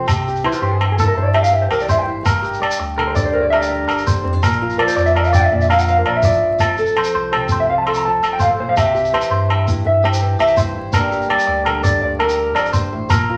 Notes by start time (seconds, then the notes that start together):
Already playing: C4
0.08 C2 C3 G4, low agogo, shekere
0.27 G4, shekere
0.35 shekere
0.44 C2 E3 E4 C5, low agogo
0.52 F4, shekere
0.61 G2 G4 C5
0.72 G#4
0.80 G2 G4, muted clean electric guitar stroke, low agogo
0.92 G#4
0.99 E4 A4, shekere
1.07 A#4
1.16 G2 C5, muted steel-string acoustic guitar stroke
1.25 D5
1.34 G4 E5, low agogo
1.43 F5, shekere
1.51 E3 E5
1.62 C5
1.71 C2 G4 A#4, low agogo, shekere
1.80 D5, shekere
1.89 G2 C5 E5, shekere
1.98 G5
2.07 G#1 E4
2.23 G1 G2 A#4, low agogo, shekere
2.42 G4, shekere
2.53 shekere
2.60 G1 G3 D5, low agogo
2.71 shekere
2.80 D2, muted clean electric guitar stroke
2.97 D3 A#4, low agogo
3.07 C5
3.15 D4 D5, shekere
3.25 C5
3.33 D2 G2 A#4
3.42 D5
3.50 G4 A#4 E5, low agogo
3.60 D5, shekere
3.70 muted steel-string acoustic guitar stroke
3.88 G1 A#4, low agogo, shekere
3.98 shekere
4.07 D3 C5, shekere
4.24 F2 C4
4.33 D4
4.43 A#1 A#2 A#4, low agogo, shekere
4.52 shekere
4.62 F4
4.70 shekere
4.78 A#1 F3 A#4 D5, low agogo
4.88 C5, shekere
4.96 F2 D5, shekere
5.06 E5, shekere
5.16 F2 A#4 D5, low agogo
5.24 F5, shekere
5.33 D4 D5 G5, shekere
5.44 E5
5.52 F2 A#2 D5
5.61 E5, shekere
5.70 F4 A#4 F5, low agogo, shekere
5.79 F#5, shekere
5.88 F3 F5
5.98 A#4
6.06 A#1 A#2 A#4 D5, low agogo
6.16 E5
6.23 A2 D5, shekere
6.32 shekere
6.42 A#1 G2
6.59 F1 F2 A4, low agogo, shekere
6.77 A4, shekere
6.86 shekere
6.96 F1 F3 C5, low agogo
7.04 shekere
7.15 C2 C5
7.33 C3 A4 C5, low agogo
7.48 C5, shekere
7.60 E5
7.69 C2 F2 F5
7.78 A5
7.87 A4 C6, low agogo
7.94 A#5, shekere
8.05 F3 A5
8.23 F1 G2 A4, low agogo, shekere
8.33 G5
8.39 A2 C5 F5, shekere
8.51 A4
8.59 F1 A#2 C5
8.69 F5
8.76 C2 C3 G4 E5, low agogo, shekere
8.95 G4, shekere
9.05 shekere
9.13 C2 E3 C5, low agogo
9.21 shekere
9.30 G2 C5
9.49 G2 E4, low agogo
9.68 E4, shekere
9.85 G2 E5, muted steel-string acoustic guitar stroke
10.04 G4 C5, low agogo
10.13 shekere
10.21 E3
10.39 C2 G4 E5, low agogo, shekere
10.48 shekere
10.57 G2 C5, shekere
10.76 G#1 E4
10.93 G1 G2 G3 A#3 D4 G4 A#4, low agogo, shekere
11.12 G4, shekere
11.22 shekere
11.29 G1 G3 D5, low agogo
11.39 shekere
11.47 D2 D5
11.65 D3 A#4, low agogo
11.84 D4 D5, shekere
12.02 D2 G2 D5
12.19 G4 A#4, low agogo
12.29 shekere
12.55 G1 F2 A#4 D5, low agogo, shekere
12.65 shekere
12.73 G2 C5, shekere
12.92 A1 A2
13.09 A#1 A#2 A#4 A#5, low agogo, shekere
13.30 F4